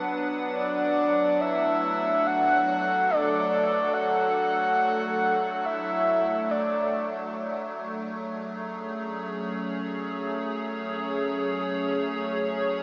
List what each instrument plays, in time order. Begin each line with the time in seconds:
Already playing: ambient pad F#3 B3 D4 B4 F#5
0.53 soft synth lead D5
0.72 ambient pad A3
1.41 soft synth lead E5
2.10 ambient pad A4
2.27 soft synth lead F#5
3.10 soft synth lead D5
3.93 soft synth lead F#5
5.66 soft synth lead E5
6.51 soft synth lead D5
7.90 ambient pad G#4 C#5
8.51 ambient pad C#4